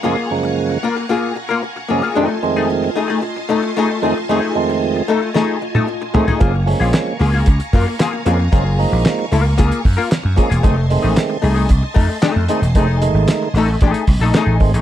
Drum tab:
HH |----------------|----------------|----------------|x-o-x-o-xxo-x-x-|
CP |----------------|----------------|----------------|----x-------x---|
SD |----------------|----------------|--------o-------|----o-------o---|
T1 |----------------|----------------|-----------o----|----------------|
FT |----------------|----------------|--------------oo|----------------|
BD |----------------|----------------|----------------|o-------o-o-----|

HH |x-o-x-o-xxo-x-xx|x-o-x-o-x-o-x-xx|x-x-x-o-xxo-x-ox|
CP |----x-------x---|----x-------x---|----x-------x---|
SD |----o-------o---|----o-------o---|----o-------o---|
T1 |----------------|----------------|----------------|
FT |----------------|----------------|----------------|
BD |o-------o-o---o-|o-------o-o-----|o-------o-o---o-|